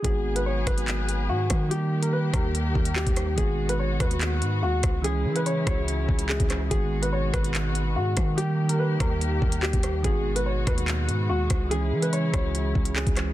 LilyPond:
<<
  \new Staff \with { instrumentName = "Upright piano" } { \time 4/4 \key gis \minor \tempo 4 = 144 gis'8. b'16 cis''8 b'4. fis'4 | g'8. ais'16 b'8 ais'4. g'4 | gis'8. b'16 cis''8 b'4. fis'4 | gis'8. b'16 cis''8 cis''4. gis'4 |
gis'8. b'16 cis''8 b'4. fis'4 | g'8. ais'16 b'8 ais'4. g'4 | gis'8. b'16 cis''8 b'4. fis'4 | gis'8. b'16 cis''8 cis''4. gis'4 | }
  \new Staff \with { instrumentName = "String section" } { \time 4/4 \key gis \minor << { <fis gis'>1 | <dis g'>1 | <b, fis'>1 | <cis e'>1 |
<b, fis'>1 | <dis g'>1 | <b, fis'>1 | <cis e'>1 | } \\ { b1 | ais1 | gis1~ | gis1 |
gis1 | ais1 | gis1~ | gis1 | } >> }
  \new Staff \with { instrumentName = "Synth keys" } { \time 4/4 \key gis \minor <dis gis b fis'>8 r16 <dis gis b fis'>8 r16 <dis gis b fis'>16 <dis gis b fis'>4~ <dis gis b fis'>16 r4 | <dis g ais g'>8 r16 <dis g ais g'>8 r16 <dis g ais g'>16 <dis g ais g'>8 r16 <dis g ais g'>8. r16 <dis g ais g'>16 r16 | <dis gis b fis'>8 r16 <dis gis b fis'>8 r16 <dis gis b fis'>16 <dis gis b fis'>4~ <dis gis b fis'>16 r4 | <e gis cis' gis'>8 r16 <e gis cis' gis'>8 r16 <e gis cis' fis'>16 <e gis cis' gis'>8 r16 <e gis cis' gis'>8. r16 <e gis cis' gis'>16 r16 |
<dis gis b fis'>8 r16 <dis gis b fis'>8 r16 <dis gis b fis'>16 <dis gis b fis'>4~ <dis gis b fis'>16 r4 | <dis g ais g'>8 r16 <dis g ais g'>8 r16 <dis g ais g'>16 <dis g ais g'>8 r16 <dis g ais g'>8. r16 <dis g ais g'>16 r16 | <dis gis b fis'>8 r16 <dis gis b fis'>8 r16 <dis gis b fis'>16 <dis gis b fis'>4~ <dis gis b fis'>16 r4 | <e gis cis' gis'>8 r16 <e gis cis' gis'>8 r16 <e gis cis' fis'>16 <e gis cis' gis'>8 r16 <e gis cis' gis'>8. r16 <e gis cis' gis'>16 r16 | }
  \new Staff \with { instrumentName = "808-style bass" } { \clef bass \time 4/4 \key gis \minor gis,,4. gis,,4. gis,8 dis8~ | dis4. dis,4 dis,8. dis,8. | gis,,4. dis,4 gis,8 dis,8 cis,8~ | cis,8 e4 cis,4 cis,8. cis,8. |
gis,,4. gis,,4. gis,8 dis8~ | dis4. dis,4 dis,8. dis,8. | gis,,4. dis,4 gis,8 dis,8 cis,8~ | cis,8 e4 cis,4 cis,8. cis,8. | }
  \new DrumStaff \with { instrumentName = "Drums" } \drummode { \time 4/4 <hh bd>8. hh16 r8 <hh bd ss>16 hh16 <hc hh>8 hh8 r8 <hh bd ss>8 | hh8. hh16 r8 <hh bd ss>8 hh8 bd16 hh16 hc16 <hh bd>16 <hh ss>8 | <hh bd>8. hh16 r8 <hh bd ss>16 hh16 <hc hh>8 hh8 r8 <hh bd ss>8 | hh8. hh16 hh8 <hh bd ss>8 hh8 bd16 hh16 hc16 <hh bd>16 <hc hh ss>8 |
<hh bd>8. hh16 r8 <hh bd ss>16 hh16 <hc hh>8 hh8 r8 <hh bd ss>8 | hh8. hh16 r8 <hh bd ss>8 hh8 bd16 hh16 hc16 <hh bd>16 <hh ss>8 | <hh bd>8. hh16 r8 <hh bd ss>16 hh16 <hc hh>8 hh8 r8 <hh bd ss>8 | hh8. hh16 hh8 <hh bd ss>8 hh8 bd16 hh16 hc16 <hh bd>16 <hc hh ss>8 | }
>>